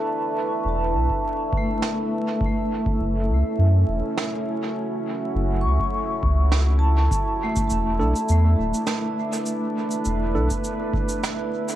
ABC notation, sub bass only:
X:1
M:4/4
L:1/8
Q:"Swing 16ths" 1/4=102
K:Emix
V:1 name="Sub bass" clef=bass
z2 E,,, B,,, z4 | z2 F,,, C,, F,, E,,, z2 | z2 F,,, C,, z C,,3 | z2 E,,, B,,, E,, D,,, z2 |
z2 E,,, B,,, z4 |]